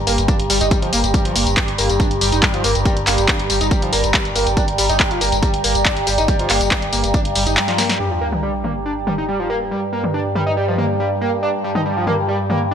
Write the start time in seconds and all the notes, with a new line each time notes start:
Already playing: G2 G4 D5 G5 A#5
0.07 G1 A#3, open hi-hat, tambourine
0.18 G1, closed hi-hat, tambourine
0.28 D4, kick, closed hi-hat, tambourine
0.40 G1, closed hi-hat
0.50 G1 G3, open hi-hat, tambourine
0.61 G1 D#4, closed hi-hat, tambourine
0.71 G3, kick, closed hi-hat, tambourine
0.82 G1 F3, closed hi-hat
0.93 G1 A#3, open hi-hat, tambourine
1.04 G1, closed hi-hat, tambourine
1.14 G3, kick, closed hi-hat, tambourine
1.25 G1 F3, closed hi-hat
1.35 G1 A#3, open hi-hat, tambourine
1.47 G1, closed hi-hat, tambourine
1.57 G3, kick, clap, closed hi-hat, tambourine
1.68 G1, closed hi-hat
1.78 G1 A#3, open hi-hat, tambourine
1.89 G1, closed hi-hat, tambourine
2.00 D4, kick, closed hi-hat, tambourine
2.11 G1, closed hi-hat
2.21 G1 G3, open hi-hat, tambourine
2.32 G1 D#4, closed hi-hat, tambourine
2.43 G3, kick, clap, closed hi-hat, tambourine
2.54 G1 F3, closed hi-hat
2.64 G1 A#3, open hi-hat, tambourine
2.75 G1, closed hi-hat, tambourine
2.85 G3, kick, closed hi-hat, tambourine
2.97 G1, closed hi-hat
3.07 G1 A#3, clap, open hi-hat, tambourine
3.18 G1, closed hi-hat, tambourine
3.28 D4, kick, clap, closed hi-hat, tambourine
3.39 G1, closed hi-hat
3.50 G1 G3, open hi-hat, tambourine
3.61 G1 D#4, closed hi-hat, tambourine
3.71 G3, kick, closed hi-hat, tambourine
3.82 G1 F3, closed hi-hat
3.92 G1 A#3, open hi-hat, tambourine
4.04 G1, closed hi-hat, tambourine
4.14 G3, kick, clap, closed hi-hat, tambourine
4.25 G1, closed hi-hat
4.35 G1 A#3, open hi-hat, tambourine
4.46 G1, closed hi-hat, tambourine
4.57 D4, kick, closed hi-hat, tambourine
4.68 G1, closed hi-hat
4.78 G1 G3, open hi-hat, tambourine
4.89 G1 D#4, closed hi-hat, tambourine
5.00 G3, kick, clap, closed hi-hat, tambourine
5.11 G1 F3, closed hi-hat
5.21 G1 A#3, open hi-hat, tambourine
5.32 G1, closed hi-hat, tambourine
5.43 G3, kick, closed hi-hat, tambourine
5.54 G1, closed hi-hat
5.64 G1 A#3, open hi-hat, tambourine
5.75 G1, closed hi-hat, tambourine
5.85 D4, kick, clap, closed hi-hat, tambourine
5.97 G1, closed hi-hat
6.07 G1 G3, open hi-hat, tambourine
6.18 G1 D#4, closed hi-hat, tambourine
6.28 G3, kick, closed hi-hat, tambourine
6.39 G1 F3, closed hi-hat
6.50 G1 A#3, clap, open hi-hat, tambourine
6.61 G1, closed hi-hat, tambourine
6.71 G3, kick, clap, closed hi-hat
6.82 G1, closed hi-hat
6.93 G1 A#3, open hi-hat, tambourine
7.04 G1, closed hi-hat, tambourine
7.14 D4, kick, closed hi-hat, tambourine
7.25 G1, closed hi-hat
7.35 G1 G3, open hi-hat, tambourine
7.47 G1 D#4, closed hi-hat, tambourine
7.57 G3, snare, clap, closed hi-hat, tambourine
7.68 F3, snare, closed hi-hat
7.78 A#3, snare, open hi-hat, tambourine
7.89 snare, closed hi-hat, tambourine
8.00 G2 G3, sub drop
8.11 F3
8.21 A#3
8.32 mid tom
8.43 G3
8.64 A#3, mid tom
8.86 D4
9.07 G3, mid tom
9.18 D#4
9.28 G3
9.39 F3
9.50 A#3
9.71 G3
9.93 A#3
10.04 mid tom
10.14 D4
10.35 G3, mid tom
10.47 D#4
10.57 G3
10.68 F3
10.78 A#3, mid tom
11.00 G3
11.21 A#3
11.43 D4
11.64 G3
11.75 D#4, mid tom
11.85 G3
11.97 F3
12.07 A#3, mid tom
12.28 G3
12.50 A#3, mid tom